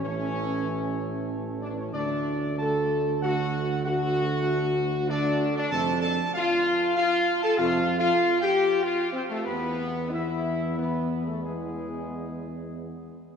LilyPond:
<<
  \new Staff \with { instrumentName = "Trumpet section" } { \time 3/4 \key e \mixolydian \tempo 4 = 95 cis''2 r8 d''16 cis''16 | d''4 a''4 fis''4 | fis''2 d''8. d''16 | a''8 a''8 f''4 f''8. a''16 |
\tuplet 3/2 { f''4 f''8~ f''8 g''4 } f''8 c''16 a'16 | b'4 e''4 b'8. a'16 | gis'2~ gis'8 r8 | }
  \new Staff \with { instrumentName = "French horn section" } { \time 3/4 \key e \mixolydian cis'2 r8 d'16 cis'16 | d'4 a'4 fis'4 | fis'2 d'8. d'16 | a'8 a'8 f'4 f'8. a'16 |
\tuplet 3/2 { f'4 f'8~ f'8 g'4 } f'8 c'16 a16 | b4 e'4 b8. a16 | gis2~ gis8 r8 | }
  \new Staff \with { instrumentName = "Trombone section" } { \clef bass \time 3/4 \key e \mixolydian <e a>2. | <d a>4 <d a>4 <d a>4 | <d a>2 <d a>4 | <c a>8 r2 r8 |
<c a>8 r2 r8 | <e b>4 <e b>4 <e b>4 | <e b>2~ <e b>8 r8 | }
  \new Staff \with { instrumentName = "Tuba" } { \clef bass \time 3/4 \key e \mixolydian a,,2. | d,2.~ | d,2. | f,4 r2 |
f,4 r2 | e,2.~ | e,2~ e,8 r8 | }
>>